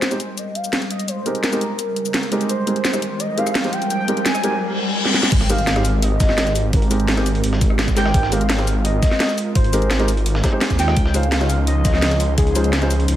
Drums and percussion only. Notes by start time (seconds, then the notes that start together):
0.02 snare, closed hi-hat, cabasa
0.11 closed hi-hat, cabasa
0.20 closed hi-hat, cabasa
0.38 closed hi-hat, cabasa
0.55 closed hi-hat
0.64 cabasa
0.73 snare, closed hi-hat, cabasa
0.82 closed hi-hat
0.90 closed hi-hat
0.99 closed hi-hat, cabasa
1.08 closed hi-hat, cabasa
1.26 closed hi-hat, cabasa
1.35 closed hi-hat
1.44 snare, closed hi-hat, cabasa
1.53 closed hi-hat, cabasa
1.61 closed hi-hat, cabasa
1.79 closed hi-hat, cabasa
1.96 closed hi-hat
2.05 cabasa
2.14 snare, closed hi-hat, cabasa
2.23 closed hi-hat
2.32 closed hi-hat
2.41 closed hi-hat, cabasa
2.49 closed hi-hat, cabasa
2.67 closed hi-hat, cabasa
2.76 closed hi-hat
2.85 snare, closed hi-hat, cabasa
2.94 cross-stick, closed hi-hat, cabasa
3.02 closed hi-hat, cabasa
3.20 closed hi-hat, cabasa
3.38 closed hi-hat
3.47 cross-stick, cabasa
3.55 snare, closed hi-hat, cabasa
3.64 closed hi-hat
3.73 closed hi-hat
3.82 closed hi-hat, cabasa
3.90 closed hi-hat, cabasa
4.08 closed hi-hat, cabasa
4.17 closed hi-hat
4.26 snare, closed hi-hat, cabasa
4.35 cross-stick, closed hi-hat, cabasa
4.44 closed hi-hat, cabasa
5.05 snare
5.14 snare
5.23 snare
5.32 kick, closed hi-hat, crash
5.41 snare
5.50 closed hi-hat, cabasa
5.58 closed hi-hat
5.67 snare, closed hi-hat
5.76 cross-stick, snare, closed hi-hat
5.85 closed hi-hat, cabasa
6.02 closed hi-hat
6.20 kick, snare, closed hi-hat, cabasa
6.29 cross-stick, snare
6.38 snare, closed hi-hat
6.47 closed hi-hat, cabasa
6.55 closed hi-hat, cabasa
6.73 kick, closed hi-hat
6.82 closed hi-hat
6.91 closed hi-hat, cabasa
7.00 closed hi-hat
7.08 snare, closed hi-hat
7.17 cross-stick, closed hi-hat
7.26 closed hi-hat, cabasa
7.35 closed hi-hat
7.44 closed hi-hat
7.53 snare
7.61 kick, closed hi-hat, cabasa
7.70 cross-stick
7.79 snare, closed hi-hat
7.88 kick, cross-stick, closed hi-hat, cabasa
7.97 snare, closed hi-hat, cabasa
8.05 cross-stick, snare
8.14 kick, closed hi-hat
8.23 snare
8.32 closed hi-hat, cabasa
8.41 closed hi-hat
8.50 snare, closed hi-hat
8.58 cross-stick, snare, closed hi-hat
8.67 closed hi-hat, cabasa
8.85 closed hi-hat
9.03 kick, snare, closed hi-hat, cabasa
9.11 cross-stick, snare
9.20 snare, closed hi-hat
9.29 closed hi-hat, cabasa
9.38 closed hi-hat, cabasa
9.55 kick, closed hi-hat
9.64 closed hi-hat
9.73 closed hi-hat, cabasa
9.82 closed hi-hat
9.91 snare, closed hi-hat
10.00 cross-stick, closed hi-hat
10.08 closed hi-hat, cabasa
10.17 closed hi-hat
10.26 closed hi-hat
10.35 snare
10.44 kick, snare, closed hi-hat, cabasa
10.53 cross-stick
10.61 snare, closed hi-hat
10.70 kick, cross-stick, closed hi-hat, cabasa
10.79 snare, closed hi-hat, cabasa
10.88 cross-stick, snare
10.97 kick, closed hi-hat
11.06 snare
11.14 closed hi-hat, cabasa
11.23 closed hi-hat
11.32 snare, closed hi-hat
11.41 cross-stick, snare, closed hi-hat
11.50 closed hi-hat, cabasa
11.67 closed hi-hat
11.85 kick, snare, closed hi-hat, cabasa
11.94 cross-stick, snare
12.02 snare, closed hi-hat
12.11 closed hi-hat, cabasa
12.20 closed hi-hat, cabasa
12.38 kick, closed hi-hat
12.47 closed hi-hat
12.55 closed hi-hat, cabasa
12.64 closed hi-hat
12.73 snare, closed hi-hat
12.82 cross-stick, closed hi-hat
12.91 closed hi-hat, cabasa
13.00 closed hi-hat
13.08 closed hi-hat